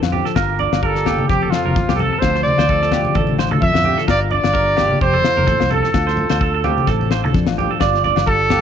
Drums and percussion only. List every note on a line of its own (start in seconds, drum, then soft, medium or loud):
0.03 snare medium
0.03 low agogo medium
0.13 low conga medium
0.26 snare soft
0.36 kick medium
0.36 snare medium
0.36 low agogo medium
0.59 low conga medium
0.73 snare medium
0.73 low agogo medium
0.83 kick medium
0.95 snare soft
1.06 snare medium
1.06 low conga medium
1.06 low agogo medium
1.18 high conga medium
1.29 kick medium
1.29 snare soft
1.42 high conga medium
1.52 snare medium
1.52 low agogo medium
1.65 high conga medium
1.76 kick medium
1.76 snare soft
1.89 snare medium
1.89 low agogo medium
1.99 low conga medium
2.22 kick medium
2.22 snare medium
2.22 low agogo medium
2.35 snare soft
2.46 high conga medium
2.58 snare medium
2.58 low agogo medium
2.69 kick medium
2.82 snare soft
2.92 snare medium
2.92 low conga medium
2.92 low agogo medium
3.05 high conga medium
3.15 kick medium
3.15 high conga medium
3.15 low conga medium
3.27 high conga medium
3.39 snare medium
3.39 low agogo medium
3.50 high conga medium
3.62 kick medium
3.74 snare medium
3.74 low agogo medium
3.84 low conga medium
3.98 snare soft
4.08 kick medium
4.08 snare medium
4.08 low agogo medium
4.31 low conga medium
4.43 snare medium
4.43 low agogo medium
4.55 kick medium
4.77 snare medium
4.77 low conga medium
4.77 low agogo medium
4.89 high conga medium
5.01 kick medium
5.13 high conga medium
5.24 snare medium
5.24 low agogo medium
5.37 high conga medium
5.48 kick medium
5.48 snare soft
5.60 snare medium
5.60 low agogo medium
5.71 low conga medium
5.84 snare soft
5.94 kick medium
5.94 snare medium
5.94 low agogo medium
6.08 snare soft
6.17 low conga medium
6.30 snare medium
6.30 low agogo medium
6.41 kick medium
6.64 low conga medium
6.64 low agogo medium
6.78 high conga medium
6.87 kick medium
6.87 snare soft
7.01 high conga medium
7.11 snare medium
7.11 low agogo medium
7.26 high conga medium
7.34 kick loud
7.34 snare soft
7.47 snare medium
7.47 low agogo medium
7.59 low conga medium
7.80 kick medium
7.80 snare medium
7.80 low agogo medium
7.94 snare soft
8.04 low conga medium
8.16 snare medium
8.16 low agogo medium
8.27 kick medium
8.50 snare medium
8.50 low conga medium
8.50 low agogo medium